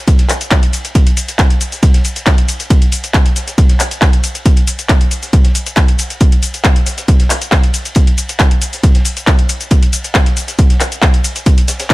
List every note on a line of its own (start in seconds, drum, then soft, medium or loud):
0.08 kick loud
0.08 closed hi-hat medium
0.08 ride medium
0.08 shaker soft
0.19 snare soft
0.19 closed hi-hat medium
0.29 clap medium
0.29 open hi-hat loud
0.29 ride medium
0.29 shaker medium
0.41 closed hi-hat medium
0.41 shaker soft
0.50 kick loud
0.50 snare loud
0.50 clap loud
0.50 closed hi-hat medium
0.50 ride medium
0.50 shaker soft
0.63 closed hi-hat medium
0.73 open hi-hat loud
0.73 ride medium
0.73 shaker medium
0.85 closed hi-hat medium
0.85 ride soft
0.85 shaker soft
0.95 kick loud
0.95 closed hi-hat medium
0.95 ride medium
0.95 shaker soft
1.07 closed hi-hat medium
1.07 ride soft
1.17 open hi-hat loud
1.17 ride medium
1.17 shaker medium
1.28 closed hi-hat medium
1.28 shaker soft
1.39 kick loud
1.39 snare loud
1.39 clap loud
1.39 closed hi-hat medium
1.39 ride medium
1.39 shaker soft
1.50 closed hi-hat medium
1.61 open hi-hat loud
1.61 ride medium
1.61 shaker medium
1.72 snare soft
1.72 open hi-hat medium
1.72 shaker soft
1.83 kick loud
1.83 closed hi-hat medium
1.83 ride loud
1.83 shaker soft
1.94 snare medium
1.94 closed hi-hat medium
2.05 open hi-hat loud
2.05 ride medium
2.05 shaker medium
2.16 closed hi-hat medium
2.16 shaker soft
2.26 kick loud
2.26 snare loud
2.26 clap loud
2.26 closed hi-hat medium
2.26 ride medium
2.26 shaker soft
2.38 closed hi-hat medium
2.48 open hi-hat loud
2.48 ride medium
2.48 shaker medium
2.60 closed hi-hat medium
2.60 shaker soft
2.70 kick loud
2.70 closed hi-hat medium
2.70 ride medium
2.70 shaker soft
2.81 closed hi-hat medium
2.81 ride soft
2.92 open hi-hat loud
2.92 ride medium
2.92 shaker medium
3.04 closed hi-hat medium
3.04 shaker soft
3.14 kick loud
3.14 snare loud
3.14 clap loud
3.14 closed hi-hat medium
3.14 ride medium
3.14 shaker soft
3.26 snare soft
3.26 closed hi-hat medium
3.36 snare soft
3.36 open hi-hat loud
3.36 ride medium
3.36 shaker medium
3.47 snare soft
3.47 closed hi-hat medium
3.47 shaker soft
3.58 kick loud
3.58 closed hi-hat medium
3.58 ride medium
3.58 shaker soft
3.69 snare soft
3.69 closed hi-hat medium
3.80 clap medium
3.80 open hi-hat loud
3.80 ride medium
3.80 shaker medium
3.91 closed hi-hat medium
3.91 shaker soft
4.02 kick loud
4.02 snare loud
4.02 clap loud
4.02 closed hi-hat medium
4.02 ride medium
4.02 shaker soft
4.13 closed hi-hat medium
4.24 open hi-hat loud
4.24 ride medium
4.24 shaker medium
4.35 closed hi-hat medium
4.35 ride soft
4.35 shaker soft
4.46 kick loud
4.46 closed hi-hat medium
4.46 ride medium
4.46 shaker soft
4.56 closed hi-hat medium
4.56 ride soft
4.67 open hi-hat loud
4.67 ride medium
4.67 shaker medium
4.79 closed hi-hat medium
4.79 shaker soft
4.89 kick loud
4.89 snare loud
4.89 clap loud
4.89 closed hi-hat medium
4.89 ride medium
4.89 shaker soft
5.01 closed hi-hat medium
5.11 open hi-hat loud
5.11 ride medium
5.11 shaker medium
5.23 snare soft
5.23 open hi-hat medium
5.23 shaker soft
5.33 kick loud
5.33 closed hi-hat medium
5.33 ride medium
5.33 shaker soft
5.44 snare soft
5.44 closed hi-hat medium
5.55 open hi-hat loud
5.55 ride medium
5.55 shaker medium
5.66 closed hi-hat medium
5.66 shaker soft
5.76 kick loud
5.76 snare loud
5.76 clap loud
5.76 closed hi-hat medium
5.76 ride medium
5.76 shaker soft
5.88 closed hi-hat medium
5.99 open hi-hat loud
5.99 ride medium
5.99 shaker medium
6.10 closed hi-hat soft
6.10 shaker soft
6.20 kick loud
6.20 closed hi-hat medium
6.20 ride medium
6.20 shaker soft
6.32 closed hi-hat medium
6.32 ride soft
6.43 open hi-hat loud
6.43 ride medium
6.43 shaker medium
6.54 closed hi-hat medium
6.54 shaker soft
6.64 kick loud
6.64 snare loud
6.64 clap loud
6.64 closed hi-hat medium
6.64 ride medium
6.64 shaker soft
6.76 snare soft
6.76 closed hi-hat medium
6.86 snare medium
6.86 open hi-hat loud
6.86 ride medium
6.86 shaker medium
6.97 snare soft
6.97 closed hi-hat soft
6.97 shaker soft
7.08 kick loud
7.08 closed hi-hat medium
7.08 ride medium
7.08 shaker soft
7.20 snare soft
7.20 closed hi-hat medium
7.30 clap medium
7.30 open hi-hat loud
7.30 ride medium
7.30 shaker medium
7.42 closed hi-hat medium
7.42 shaker soft
7.52 kick loud
7.52 snare loud
7.52 clap loud
7.52 closed hi-hat medium
7.52 ride medium
7.52 shaker soft
7.63 closed hi-hat soft
7.74 open hi-hat loud
7.74 ride medium
7.74 shaker medium
7.85 closed hi-hat soft
7.85 ride soft
7.85 shaker soft
7.95 kick loud
7.95 closed hi-hat medium
7.95 ride medium
7.95 shaker soft
8.07 closed hi-hat medium
8.07 ride soft
8.18 open hi-hat loud
8.18 ride medium
8.18 shaker medium
8.29 closed hi-hat medium
8.29 shaker soft
8.39 kick loud
8.39 snare loud
8.39 clap loud
8.39 closed hi-hat medium
8.39 ride medium
8.39 shaker soft
8.51 closed hi-hat medium
8.62 open hi-hat loud
8.62 ride medium
8.62 shaker medium
8.73 snare soft
8.73 open hi-hat medium
8.73 shaker soft
8.83 kick loud
8.83 closed hi-hat medium
8.83 ride medium
8.83 shaker soft
8.94 snare medium
8.94 closed hi-hat soft
9.05 open hi-hat loud
9.05 ride medium
9.05 shaker medium
9.17 closed hi-hat medium
9.17 shaker soft
9.27 kick loud
9.27 snare loud
9.27 clap loud
9.27 closed hi-hat medium
9.27 ride medium
9.27 shaker soft
9.39 closed hi-hat medium
9.49 open hi-hat loud
9.49 ride medium
9.49 shaker medium
9.61 closed hi-hat soft
9.61 shaker soft
9.71 kick loud
9.71 closed hi-hat medium
9.71 ride medium
9.71 shaker soft
9.82 closed hi-hat medium
9.82 ride soft
9.93 open hi-hat loud
9.93 ride medium
9.93 shaker medium
10.04 closed hi-hat medium
10.04 shaker soft
10.15 kick loud
10.15 snare loud
10.15 clap loud
10.15 closed hi-hat medium
10.15 ride medium
10.15 shaker soft
10.26 snare soft
10.26 closed hi-hat medium
10.37 snare soft
10.37 open hi-hat loud
10.37 ride medium
10.37 shaker medium
10.48 snare soft
10.48 closed hi-hat medium
10.48 shaker soft
10.59 kick loud
10.59 closed hi-hat medium
10.59 ride medium
10.59 shaker soft
10.70 snare soft
10.70 closed hi-hat soft
10.81 clap medium
10.81 open hi-hat loud
10.81 ride medium
10.81 shaker medium
10.92 closed hi-hat medium
10.92 shaker soft
11.02 kick loud
11.02 snare loud
11.02 clap loud
11.02 closed hi-hat medium
11.02 ride medium
11.02 shaker soft
11.14 closed hi-hat medium
11.24 open hi-hat loud
11.24 ride medium
11.24 shaker medium
11.36 closed hi-hat soft
11.36 ride soft
11.36 shaker soft
11.46 kick loud
11.46 closed hi-hat medium
11.46 ride medium
11.46 shaker soft
11.57 closed hi-hat medium
11.57 ride soft
11.68 snare loud
11.68 open hi-hat loud
11.68 ride medium
11.68 shaker medium
11.80 snare loud
11.80 closed hi-hat medium
11.80 ride medium
11.80 shaker soft
11.90 kick loud
11.90 snare medium
11.90 clap loud
11.90 closed hi-hat medium
11.90 ride medium
11.90 shaker soft